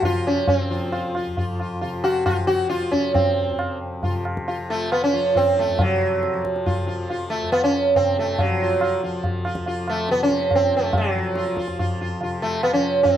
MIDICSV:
0, 0, Header, 1, 4, 480
1, 0, Start_track
1, 0, Key_signature, -1, "major"
1, 0, Tempo, 445765
1, 515, Time_signature, 3, 2, 24, 8
1, 3870, Tempo, 437318
1, 7710, Tempo, 428878
1, 11070, Tempo, 421053
1, 14577, End_track
2, 0, Start_track
2, 0, Title_t, "Sitar"
2, 0, Program_c, 0, 104
2, 53, Note_on_c, 0, 65, 89
2, 290, Note_on_c, 0, 61, 70
2, 291, Note_off_c, 0, 65, 0
2, 518, Note_off_c, 0, 61, 0
2, 522, Note_on_c, 0, 60, 75
2, 756, Note_on_c, 0, 65, 34
2, 980, Note_off_c, 0, 65, 0
2, 995, Note_on_c, 0, 65, 34
2, 1199, Note_off_c, 0, 60, 0
2, 1220, Note_off_c, 0, 65, 0
2, 1252, Note_on_c, 0, 65, 34
2, 1465, Note_off_c, 0, 65, 0
2, 1478, Note_on_c, 0, 65, 35
2, 1702, Note_off_c, 0, 65, 0
2, 1728, Note_on_c, 0, 65, 35
2, 1940, Note_off_c, 0, 65, 0
2, 1953, Note_on_c, 0, 65, 36
2, 2179, Note_off_c, 0, 65, 0
2, 2194, Note_on_c, 0, 66, 89
2, 2427, Note_off_c, 0, 66, 0
2, 2431, Note_on_c, 0, 65, 83
2, 2657, Note_off_c, 0, 65, 0
2, 2662, Note_on_c, 0, 66, 96
2, 2892, Note_off_c, 0, 66, 0
2, 2901, Note_on_c, 0, 65, 85
2, 3131, Note_off_c, 0, 65, 0
2, 3138, Note_on_c, 0, 61, 73
2, 3380, Note_off_c, 0, 61, 0
2, 3384, Note_on_c, 0, 60, 67
2, 4064, Note_off_c, 0, 60, 0
2, 4359, Note_on_c, 0, 65, 38
2, 4582, Note_off_c, 0, 65, 0
2, 4840, Note_on_c, 0, 65, 39
2, 5063, Note_off_c, 0, 65, 0
2, 5083, Note_on_c, 0, 65, 33
2, 5086, Note_on_c, 0, 57, 81
2, 5304, Note_off_c, 0, 65, 0
2, 5323, Note_off_c, 0, 57, 0
2, 5327, Note_on_c, 0, 59, 87
2, 5447, Note_off_c, 0, 59, 0
2, 5453, Note_on_c, 0, 61, 89
2, 5559, Note_on_c, 0, 65, 35
2, 5783, Note_off_c, 0, 65, 0
2, 5800, Note_on_c, 0, 65, 36
2, 5818, Note_off_c, 0, 61, 0
2, 5820, Note_on_c, 0, 60, 92
2, 6023, Note_off_c, 0, 65, 0
2, 6036, Note_on_c, 0, 65, 33
2, 6057, Note_off_c, 0, 60, 0
2, 6064, Note_on_c, 0, 57, 80
2, 6261, Note_off_c, 0, 65, 0
2, 6298, Note_off_c, 0, 57, 0
2, 6305, Note_on_c, 0, 54, 82
2, 6965, Note_off_c, 0, 54, 0
2, 7237, Note_on_c, 0, 65, 38
2, 7453, Note_off_c, 0, 65, 0
2, 7466, Note_on_c, 0, 65, 40
2, 7690, Note_off_c, 0, 65, 0
2, 7721, Note_on_c, 0, 65, 38
2, 7941, Note_off_c, 0, 65, 0
2, 7941, Note_on_c, 0, 57, 89
2, 8171, Note_off_c, 0, 57, 0
2, 8189, Note_on_c, 0, 59, 98
2, 8315, Note_off_c, 0, 59, 0
2, 8319, Note_on_c, 0, 61, 96
2, 8679, Note_off_c, 0, 61, 0
2, 8683, Note_on_c, 0, 60, 98
2, 8928, Note_off_c, 0, 60, 0
2, 8939, Note_on_c, 0, 57, 81
2, 9176, Note_off_c, 0, 57, 0
2, 9177, Note_on_c, 0, 54, 79
2, 9418, Note_on_c, 0, 65, 41
2, 9632, Note_off_c, 0, 65, 0
2, 9644, Note_on_c, 0, 65, 38
2, 9843, Note_off_c, 0, 54, 0
2, 9864, Note_off_c, 0, 65, 0
2, 9880, Note_on_c, 0, 65, 40
2, 10102, Note_off_c, 0, 65, 0
2, 10358, Note_on_c, 0, 65, 36
2, 10579, Note_off_c, 0, 65, 0
2, 10599, Note_on_c, 0, 65, 42
2, 10819, Note_off_c, 0, 65, 0
2, 10847, Note_on_c, 0, 57, 89
2, 11085, Note_off_c, 0, 57, 0
2, 11091, Note_on_c, 0, 59, 94
2, 11205, Note_off_c, 0, 59, 0
2, 11223, Note_on_c, 0, 61, 97
2, 11581, Note_off_c, 0, 61, 0
2, 11593, Note_on_c, 0, 60, 90
2, 11800, Note_off_c, 0, 60, 0
2, 11837, Note_on_c, 0, 57, 87
2, 12042, Note_off_c, 0, 57, 0
2, 12074, Note_on_c, 0, 54, 76
2, 12524, Note_on_c, 0, 65, 38
2, 12732, Note_off_c, 0, 54, 0
2, 12745, Note_off_c, 0, 65, 0
2, 12764, Note_on_c, 0, 65, 38
2, 12985, Note_off_c, 0, 65, 0
2, 13006, Note_on_c, 0, 65, 39
2, 13226, Note_off_c, 0, 65, 0
2, 13254, Note_on_c, 0, 65, 35
2, 13470, Note_off_c, 0, 65, 0
2, 13505, Note_on_c, 0, 65, 38
2, 13715, Note_off_c, 0, 65, 0
2, 13723, Note_on_c, 0, 57, 84
2, 13958, Note_off_c, 0, 57, 0
2, 13963, Note_on_c, 0, 59, 95
2, 14074, Note_off_c, 0, 59, 0
2, 14079, Note_on_c, 0, 61, 93
2, 14415, Note_off_c, 0, 61, 0
2, 14419, Note_on_c, 0, 60, 95
2, 14577, Note_off_c, 0, 60, 0
2, 14577, End_track
3, 0, Start_track
3, 0, Title_t, "Tanpura"
3, 0, Program_c, 1, 104
3, 0, Note_on_c, 1, 41, 57
3, 0, Note_on_c, 1, 48, 62
3, 0, Note_on_c, 1, 53, 56
3, 142, Note_off_c, 1, 53, 0
3, 142, Note_on_c, 1, 53, 52
3, 751, Note_off_c, 1, 53, 0
3, 751, Note_on_c, 1, 53, 59
3, 1356, Note_off_c, 1, 41, 0
3, 1360, Note_on_c, 1, 41, 61
3, 1954, Note_off_c, 1, 48, 0
3, 1958, Note_on_c, 1, 48, 61
3, 2565, Note_off_c, 1, 53, 0
3, 2565, Note_on_c, 1, 53, 58
3, 3163, Note_off_c, 1, 53, 0
3, 3163, Note_on_c, 1, 53, 57
3, 3752, Note_off_c, 1, 41, 0
3, 3756, Note_on_c, 1, 41, 57
3, 4349, Note_off_c, 1, 48, 0
3, 4353, Note_on_c, 1, 48, 57
3, 4957, Note_off_c, 1, 53, 0
3, 4957, Note_on_c, 1, 53, 55
3, 5567, Note_off_c, 1, 53, 0
3, 5567, Note_on_c, 1, 53, 58
3, 6140, Note_off_c, 1, 41, 0
3, 6144, Note_on_c, 1, 41, 57
3, 6272, Note_off_c, 1, 48, 0
3, 6276, Note_on_c, 1, 48, 67
3, 6874, Note_off_c, 1, 53, 0
3, 6874, Note_on_c, 1, 53, 61
3, 7460, Note_off_c, 1, 53, 0
3, 7460, Note_on_c, 1, 53, 58
3, 8064, Note_off_c, 1, 41, 0
3, 8069, Note_on_c, 1, 41, 60
3, 8678, Note_off_c, 1, 48, 0
3, 8683, Note_on_c, 1, 48, 61
3, 9282, Note_off_c, 1, 53, 0
3, 9282, Note_on_c, 1, 53, 64
3, 9877, Note_off_c, 1, 53, 0
3, 9877, Note_on_c, 1, 53, 67
3, 10475, Note_off_c, 1, 41, 0
3, 10479, Note_on_c, 1, 41, 61
3, 11055, Note_off_c, 1, 48, 0
3, 11059, Note_on_c, 1, 48, 60
3, 11672, Note_off_c, 1, 53, 0
3, 11672, Note_on_c, 1, 53, 58
3, 12271, Note_off_c, 1, 53, 0
3, 12271, Note_on_c, 1, 53, 63
3, 12861, Note_off_c, 1, 41, 0
3, 12866, Note_on_c, 1, 41, 66
3, 13462, Note_off_c, 1, 48, 0
3, 13466, Note_on_c, 1, 48, 60
3, 14074, Note_off_c, 1, 53, 0
3, 14074, Note_on_c, 1, 53, 65
3, 14577, Note_off_c, 1, 41, 0
3, 14577, Note_off_c, 1, 48, 0
3, 14577, Note_off_c, 1, 53, 0
3, 14577, End_track
4, 0, Start_track
4, 0, Title_t, "Tabla"
4, 27, Note_on_c, 9, 63, 73
4, 27, Note_on_c, 9, 64, 64
4, 134, Note_off_c, 9, 63, 0
4, 134, Note_off_c, 9, 64, 0
4, 511, Note_on_c, 9, 63, 99
4, 511, Note_on_c, 9, 64, 87
4, 619, Note_off_c, 9, 63, 0
4, 619, Note_off_c, 9, 64, 0
4, 995, Note_on_c, 9, 60, 78
4, 1103, Note_off_c, 9, 60, 0
4, 1237, Note_on_c, 9, 60, 57
4, 1344, Note_off_c, 9, 60, 0
4, 1476, Note_on_c, 9, 63, 72
4, 1476, Note_on_c, 9, 64, 66
4, 1584, Note_off_c, 9, 63, 0
4, 1584, Note_off_c, 9, 64, 0
4, 1718, Note_on_c, 9, 60, 57
4, 1826, Note_off_c, 9, 60, 0
4, 1961, Note_on_c, 9, 63, 70
4, 2068, Note_off_c, 9, 63, 0
4, 2195, Note_on_c, 9, 60, 61
4, 2303, Note_off_c, 9, 60, 0
4, 2432, Note_on_c, 9, 60, 75
4, 2432, Note_on_c, 9, 64, 72
4, 2540, Note_off_c, 9, 60, 0
4, 2540, Note_off_c, 9, 64, 0
4, 2678, Note_on_c, 9, 62, 55
4, 2786, Note_off_c, 9, 62, 0
4, 2918, Note_on_c, 9, 62, 69
4, 3026, Note_off_c, 9, 62, 0
4, 3041, Note_on_c, 9, 62, 56
4, 3149, Note_off_c, 9, 62, 0
4, 3155, Note_on_c, 9, 37, 57
4, 3262, Note_off_c, 9, 37, 0
4, 3274, Note_on_c, 9, 62, 52
4, 3382, Note_off_c, 9, 62, 0
4, 3390, Note_on_c, 9, 63, 101
4, 3390, Note_on_c, 9, 64, 92
4, 3498, Note_off_c, 9, 63, 0
4, 3498, Note_off_c, 9, 64, 0
4, 3864, Note_on_c, 9, 60, 76
4, 3973, Note_off_c, 9, 60, 0
4, 4347, Note_on_c, 9, 63, 75
4, 4347, Note_on_c, 9, 64, 65
4, 4457, Note_off_c, 9, 63, 0
4, 4457, Note_off_c, 9, 64, 0
4, 4592, Note_on_c, 9, 60, 59
4, 4702, Note_off_c, 9, 60, 0
4, 4723, Note_on_c, 9, 37, 57
4, 4833, Note_off_c, 9, 37, 0
4, 4843, Note_on_c, 9, 63, 80
4, 4952, Note_off_c, 9, 63, 0
4, 5324, Note_on_c, 9, 60, 76
4, 5434, Note_off_c, 9, 60, 0
4, 5801, Note_on_c, 9, 63, 71
4, 5801, Note_on_c, 9, 64, 64
4, 5911, Note_off_c, 9, 63, 0
4, 5911, Note_off_c, 9, 64, 0
4, 6277, Note_on_c, 9, 63, 108
4, 6277, Note_on_c, 9, 64, 96
4, 6386, Note_off_c, 9, 63, 0
4, 6386, Note_off_c, 9, 64, 0
4, 6762, Note_on_c, 9, 62, 86
4, 6872, Note_off_c, 9, 62, 0
4, 6882, Note_on_c, 9, 62, 62
4, 6992, Note_off_c, 9, 62, 0
4, 7002, Note_on_c, 9, 37, 64
4, 7112, Note_off_c, 9, 37, 0
4, 7125, Note_on_c, 9, 62, 62
4, 7235, Note_off_c, 9, 62, 0
4, 7241, Note_on_c, 9, 63, 78
4, 7241, Note_on_c, 9, 64, 71
4, 7350, Note_off_c, 9, 63, 0
4, 7350, Note_off_c, 9, 64, 0
4, 7714, Note_on_c, 9, 63, 78
4, 7826, Note_off_c, 9, 63, 0
4, 8196, Note_on_c, 9, 60, 89
4, 8308, Note_off_c, 9, 60, 0
4, 8679, Note_on_c, 9, 63, 81
4, 8679, Note_on_c, 9, 64, 70
4, 8791, Note_off_c, 9, 63, 0
4, 8791, Note_off_c, 9, 64, 0
4, 9156, Note_on_c, 9, 63, 111
4, 9156, Note_on_c, 9, 64, 98
4, 9268, Note_off_c, 9, 63, 0
4, 9268, Note_off_c, 9, 64, 0
4, 9632, Note_on_c, 9, 60, 82
4, 9744, Note_off_c, 9, 60, 0
4, 10109, Note_on_c, 9, 63, 76
4, 10109, Note_on_c, 9, 64, 74
4, 10221, Note_off_c, 9, 63, 0
4, 10221, Note_off_c, 9, 64, 0
4, 10347, Note_on_c, 9, 60, 60
4, 10459, Note_off_c, 9, 60, 0
4, 10463, Note_on_c, 9, 37, 60
4, 10575, Note_off_c, 9, 37, 0
4, 10587, Note_on_c, 9, 63, 84
4, 10699, Note_off_c, 9, 63, 0
4, 10824, Note_on_c, 9, 60, 62
4, 10936, Note_off_c, 9, 60, 0
4, 11061, Note_on_c, 9, 62, 80
4, 11175, Note_off_c, 9, 62, 0
4, 11187, Note_on_c, 9, 62, 63
4, 11301, Note_off_c, 9, 62, 0
4, 11307, Note_on_c, 9, 37, 58
4, 11421, Note_off_c, 9, 37, 0
4, 11421, Note_on_c, 9, 62, 61
4, 11535, Note_off_c, 9, 62, 0
4, 11540, Note_on_c, 9, 63, 76
4, 11540, Note_on_c, 9, 64, 71
4, 11654, Note_off_c, 9, 63, 0
4, 11654, Note_off_c, 9, 64, 0
4, 12023, Note_on_c, 9, 63, 115
4, 12023, Note_on_c, 9, 64, 88
4, 12137, Note_off_c, 9, 63, 0
4, 12137, Note_off_c, 9, 64, 0
4, 12507, Note_on_c, 9, 62, 87
4, 12621, Note_off_c, 9, 62, 0
4, 12630, Note_on_c, 9, 62, 55
4, 12744, Note_off_c, 9, 62, 0
4, 12751, Note_on_c, 9, 37, 62
4, 12865, Note_off_c, 9, 37, 0
4, 12875, Note_on_c, 9, 62, 61
4, 12989, Note_off_c, 9, 62, 0
4, 13006, Note_on_c, 9, 63, 82
4, 13006, Note_on_c, 9, 64, 70
4, 13120, Note_off_c, 9, 63, 0
4, 13120, Note_off_c, 9, 64, 0
4, 13480, Note_on_c, 9, 63, 85
4, 13594, Note_off_c, 9, 63, 0
4, 13961, Note_on_c, 9, 60, 83
4, 14075, Note_off_c, 9, 60, 0
4, 14437, Note_on_c, 9, 63, 82
4, 14437, Note_on_c, 9, 64, 69
4, 14551, Note_off_c, 9, 63, 0
4, 14551, Note_off_c, 9, 64, 0
4, 14577, End_track
0, 0, End_of_file